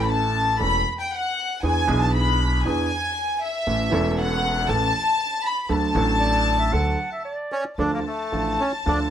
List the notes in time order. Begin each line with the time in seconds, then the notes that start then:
Already playing: A1 A2 E3 A3 C#4 A4
0.02 B5
0.09 A5
0.59 E1 E2 E3 A3 C#4 A4 B5
1.00 G5
1.13 F#5
1.63 E2 E3 B3 D4 G#4 G#5
1.86 B1 B2 E3 B3 D4
1.90 G#4
2.01 A5
2.15 B5
2.65 E2 E3 B3 D4 G#4 G#5
3.43 E5
3.67 A1 A2 E3 A3 C#4 A4
3.90 E1 E2 E3 A3 C#4 A4
4.20 F#5
4.68 A1 A2 E3 A3 C#4 A4 A5
5.46 B5
5.63 B5
5.69 D2 D3 F#3 A3 D4 A4 A5
5.93 A1 A2 F#3 A3 D4
5.97 A4
6.20 D5
6.59 E5
6.72 D2 D3 F#3 A3 D4 A4 F#5
7.12 E5
7.25 D5
7.52 C#4
7.78 D2 D3 F3 A3 D4 A4 A5
7.94 A#3
8.07 A3
8.32 A1 A2 F3 A3 D4 A4
8.60 C#4
8.86 D2 D3 F3 A3 D4 A4